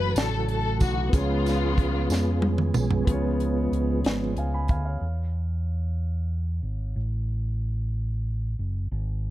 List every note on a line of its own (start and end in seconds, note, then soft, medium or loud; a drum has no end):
0.00 0.12 F#1 loud
0.00 1.10 C#3 medium
0.00 1.11 E3 medium
0.00 1.11 F#3 medium
0.00 1.07 A3 medium
0.00 1.11 A3 medium
0.00 1.08 E4 medium
0.00 1.09 F#4 medium
0.00 1.11 F#4 medium
0.00 0.18 B4 loud
0.00 1.14 C#5 medium
0.15 0.81 A1 medium
0.15 snare medium
0.15 closed hi-hat medium
0.15 tambourine medium
0.19 0.48 A4 medium
0.49 0.80 A4 medium
0.49 closed hi-hat soft
0.80 1.11 B1 medium
0.80 1.12 F#4 medium
0.80 kick medium
0.80 closed hi-hat soft
0.80 tambourine medium
1.09 3.01 B3 medium
1.09 3.05 B3 medium
1.09 3.02 F4 medium
1.09 kick loud
1.09 closed hi-hat medium
1.13 2.06 C#2 loud
1.13 2.06 C#3 medium
1.13 3.05 F3 medium
1.13 3.06 G#3 medium
1.13 2.41 B3 medium
1.13 3.05 C#4 medium
1.13 2.44 F4 medium
1.13 3.05 G#4 medium
1.13 3.04 G#4 medium
1.13 3.05 C#5 medium
1.13 tambourine soft
1.17 2.41 G#3 medium
1.46 snare soft
1.46 closed hi-hat soft
1.46 tambourine medium
1.78 kick medium
1.78 closed hi-hat soft
2.10 2.71 F2 medium
2.10 snare medium
2.10 tambourine medium
2.42 high tom medium
2.58 mid tom medium
2.74 3.05 B1 medium
2.74 mid tom medium
2.74 tambourine medium
2.91 floor tom medium
3.05 3.68 C#2 medium
3.05 4.01 C#3 medium
3.05 4.99 F3 medium
3.05 4.00 F3 soft
3.05 4.99 G#3 medium
3.05 4.00 G#3 soft
3.05 4.96 B3 medium
3.05 4.99 B3 medium
3.05 4.01 B3 medium
3.05 5.00 C#4 medium
3.05 4.97 F4 medium
3.05 kick loud
3.05 closed hi-hat medium
3.09 4.98 G#4 medium
3.09 4.36 C#5 medium
3.40 closed hi-hat soft
3.71 4.01 C#2 medium
3.71 closed hi-hat soft
4.04 4.34 G#1 medium
4.04 4.34 F3 soft
4.04 4.34 G#3 soft
4.04 4.34 B3 soft
4.04 snare medium
4.04 closed hi-hat medium
4.37 4.66 C#2 medium
4.37 4.53 F5 soft
4.37 4.53 G#5 soft
4.37 closed hi-hat soft
4.54 4.68 G#5 soft
4.54 4.69 B5 medium
4.68 4.99 D2 medium
4.68 4.84 F5 soft
4.68 4.85 G#5 medium
4.68 kick medium
4.68 closed hi-hat soft
4.85 5.16 C#5 soft
4.85 5.16 F5 soft
5.01 6.59 E2 medium
6.63 6.93 G#1 medium
6.96 8.54 A1 medium
8.59 8.88 F#1 medium
8.91 9.30 G#1 medium